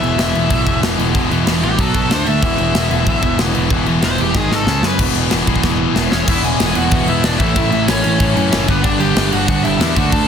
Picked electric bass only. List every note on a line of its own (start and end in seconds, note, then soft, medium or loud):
0.02 0.17 E1 loud
0.19 0.34 E1 medium
0.35 0.50 E1 medium
0.51 0.66 B1 medium
0.67 0.82 E1 medium
0.83 0.98 E1 loud
0.98 1.14 E1 medium
1.15 1.30 E1 loud
1.31 1.46 E1 medium
1.47 1.62 E1 loud
1.64 1.78 A1 medium
1.78 1.94 B1 loud
1.95 2.10 B1 medium
2.12 2.27 D2 medium
2.27 2.42 D2 medium
2.43 2.58 E1 medium
2.59 2.74 E1 medium
2.75 2.90 E1 loud
2.91 3.06 E1 medium
3.07 3.22 B1 loud
3.23 3.38 E1 medium
3.40 3.55 E1 loud
3.57 3.70 E1 medium
3.71 3.86 E1 loud
3.88 4.03 E1 medium
4.04 4.19 E1 loud
4.20 4.34 E1 loud
4.35 4.50 G#1 loud
4.51 4.66 G#1 medium
4.67 4.82 C#2 loud
4.82 4.98 F#2 loud
4.99 5.10 E1 loud
5.15 5.26 E1 loud
5.32 5.42 E1 loud
5.47 5.58 B1 medium
5.63 5.85 E1 loud
5.96 6.06 E1 medium
6.12 6.23 E1 medium
6.28 6.55 E1 loud
6.61 6.74 E1 loud
6.76 6.89 E1 loud
6.92 7.05 E1 medium
7.08 7.21 E1 medium
7.24 7.40 E1 loud
7.40 7.54 A1 loud
7.56 7.70 A1 loud
7.73 7.86 A1 loud
7.89 8.02 A1 loud
8.05 8.18 A1 medium
8.20 8.34 A1 loud
8.36 8.50 F#2 loud
8.53 8.66 F#1 loud
8.68 8.82 G1 medium
8.84 9.11 G1 loud
9.16 9.30 G1 loud
9.33 9.46 G1 loud
9.49 9.62 G1 loud
9.65 9.78 G1 loud
9.80 9.94 E2 loud
9.97 10.10 D2 medium
10.12 10.26 D2 medium